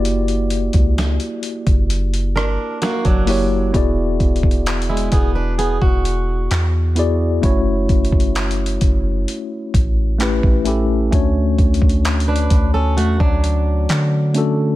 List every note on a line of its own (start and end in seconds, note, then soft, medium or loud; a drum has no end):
0.00 0.70 F#1 loud
0.00 1.08 A#3 medium
0.00 1.09 E4 medium
0.00 1.09 F#4 medium
0.00 1.10 G4 medium
0.00 1.13 D5 loud
0.05 closed hi-hat medium
0.28 closed hi-hat medium
0.50 closed hi-hat medium
0.73 1.18 C#2 loud
0.73 kick medium
0.73 closed hi-hat medium
0.98 snare loud
0.98 closed hi-hat medium
1.20 closed hi-hat soft
1.43 closed hi-hat medium
1.67 2.37 F#1 loud
1.67 kick medium
1.67 closed hi-hat soft
1.90 closed hi-hat medium
2.14 closed hi-hat medium
2.36 2.58 G1 loud
2.36 2.80 D4 medium
2.36 2.79 A#4 medium
2.36 cross-stick loud
2.82 3.04 A#3 medium
2.82 3.04 F#4 medium
2.82 snare loud
2.82 closed hi-hat medium
3.05 3.71 F#1 medium
3.05 3.71 F#3 medium
3.05 3.71 D4 medium
3.05 kick medium
3.05 closed hi-hat soft
3.26 3.65 A#3 medium
3.26 3.65 E4 medium
3.26 3.66 F#4 medium
3.26 3.66 G4 medium
3.26 3.67 C#5 loud
3.26 open hi-hat medium
3.72 4.18 E1 loud
3.72 5.23 B3 medium
3.72 5.24 E4 medium
3.72 5.24 F#4 medium
3.72 5.25 G#4 medium
3.72 5.25 D5 medium
3.72 kick loud
3.72 closed hi-hat medium
4.20 5.09 E1 loud
4.20 kick medium
4.20 closed hi-hat soft
4.36 closed hi-hat soft
4.43 kick medium
4.51 closed hi-hat soft
4.66 clap loud
4.66 closed hi-hat medium
4.82 closed hi-hat medium
4.89 5.12 G#3 medium
4.89 5.11 E4 medium
4.97 closed hi-hat medium
5.12 5.79 E1 loud
5.12 5.35 B3 medium
5.12 5.34 G#4 medium
5.12 kick loud
5.12 closed hi-hat medium
5.35 5.58 D4 medium
5.35 5.57 B4 medium
5.59 5.81 B3 medium
5.59 5.81 G#4 medium
5.59 closed hi-hat medium
5.82 6.48 E1 loud
5.82 7.16 F#4 medium
5.82 kick loud
6.05 closed hi-hat medium
6.51 7.40 E2 loud
6.51 clap loud
6.51 closed hi-hat medium
6.95 7.34 B3 medium
6.95 7.34 E4 medium
6.95 7.35 F#4 medium
6.95 7.35 G#4 medium
6.95 7.36 D5 medium
6.95 closed hi-hat medium
7.41 7.88 F#1 loud
7.41 8.93 A3 medium
7.41 8.93 C#4 medium
7.41 8.94 E4 medium
7.41 8.94 F#4 medium
7.41 8.95 C#5 loud
7.41 kick loud
7.41 closed hi-hat medium
7.89 8.78 F#1 loud
7.89 kick medium
7.89 closed hi-hat soft
8.05 closed hi-hat soft
8.12 kick medium
8.20 closed hi-hat medium
8.35 clap loud
8.35 closed hi-hat medium
8.51 closed hi-hat medium
8.66 closed hi-hat medium
8.81 9.26 F#1 loud
8.81 kick loud
8.81 closed hi-hat medium
9.28 closed hi-hat medium
9.74 10.41 A1 loud
9.74 kick medium
9.74 closed hi-hat medium
10.18 10.57 A3 medium
10.18 10.57 C#4 medium
10.18 10.58 E4 medium
10.18 10.58 G4 medium
10.18 clap loud
10.18 closed hi-hat medium
10.22 10.59 B4 loud
10.43 11.10 A1 loud
10.43 kick medium
10.64 11.03 A3 medium
10.64 11.03 C#4 medium
10.64 11.04 E4 medium
10.64 11.04 G4 medium
10.64 11.05 A4 medium
10.64 closed hi-hat medium
11.11 11.57 D2 loud
11.11 12.62 A3 medium
11.11 12.62 C#4 medium
11.11 12.63 D4 medium
11.11 12.63 F#4 medium
11.11 12.64 C#5 loud
11.11 kick loud
11.11 closed hi-hat medium
11.58 11.81 D2 loud
11.58 kick medium
11.58 closed hi-hat soft
11.74 closed hi-hat soft
11.82 12.48 D2 loud
11.82 kick medium
11.89 closed hi-hat soft
12.05 clap loud
12.05 closed hi-hat medium
12.20 closed hi-hat medium
12.28 12.72 D4 medium
12.28 12.72 B4 medium
12.36 closed hi-hat medium
12.50 12.99 D2 loud
12.50 kick loud
12.50 closed hi-hat medium
12.74 12.96 C#4 medium
12.74 12.96 A4 medium
12.97 13.19 E2 medium
12.97 13.19 A3 medium
12.97 13.19 F#4 medium
12.97 closed hi-hat medium
13.20 13.87 D2 loud
13.20 14.55 F#3 medium
13.20 14.55 D4 medium
13.20 kick loud
13.44 closed hi-hat medium
13.89 14.76 D3 loud
13.89 clap loud
13.89 closed hi-hat medium
14.34 14.72 A3 medium
14.34 14.73 C#4 medium
14.34 14.73 D4 medium
14.34 14.74 F#4 medium
14.34 closed hi-hat medium
14.38 14.74 A4 medium